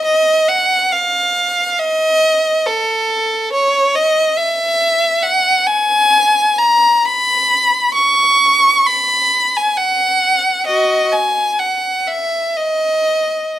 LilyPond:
\new Staff \with { instrumentName = "Violin" } { \time 3/4 \key dis \minor \tempo 4 = 67 dis''8 fis''8 eis''4 dis''4 | a'4 cis''8 dis''8 e''4 | \key fis \mixolydian fis''8 gis''4 ais''8 b''4 | cis'''4 b''8. gis''16 fis''4 |
<fis' dis''>8 gis''8 fis''8 e''8 dis''4 | }